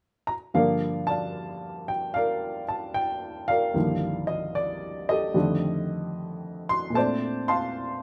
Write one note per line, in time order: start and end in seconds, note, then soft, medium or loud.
0.27 0.33 A#5 medium
0.54 3.73 G2 soft
0.54 3.75 D3 soft
0.54 3.74 F3 soft
0.54 3.74 A#3 medium
0.54 2.12 A#4 medium
0.54 1.08 D5 soft
0.54 1.04 F5 medium
1.07 2.14 D5 soft
1.07 2.12 F5 soft
1.07 1.90 A5 medium
1.88 2.16 G5 medium
2.14 3.49 A#4 medium
2.14 3.48 D5 medium
2.14 2.64 F5 medium
2.69 2.93 A5 medium
2.94 3.06 G5 medium
3.48 5.05 A#4 medium
3.48 4.54 D5 soft
3.48 4.24 F5 medium
3.74 5.35 C2 soft
3.74 5.35 G2 soft
3.74 5.34 D3 soft
3.74 5.33 D#3 soft
3.74 5.35 F3 soft
3.74 5.35 A#3 soft
4.27 4.55 D#5 medium
4.55 5.10 D5 medium
5.09 6.66 G4 soft
5.09 6.66 A4 soft
5.09 6.74 D#5 medium
5.34 6.95 F2 medium
5.34 6.95 D3 medium
5.34 6.95 D#3 soft
5.34 6.95 G3 soft
5.34 6.93 A3 soft
6.69 6.94 C6 medium
6.90 8.03 A#2 soft
6.94 8.03 A3 soft
6.94 8.03 C4 soft
6.94 8.03 C5 medium
6.94 8.03 D5 medium
6.94 7.48 A5 medium
7.01 8.03 D4 medium
7.48 8.03 F5 medium
7.48 8.03 A5 medium
7.48 8.03 C6 medium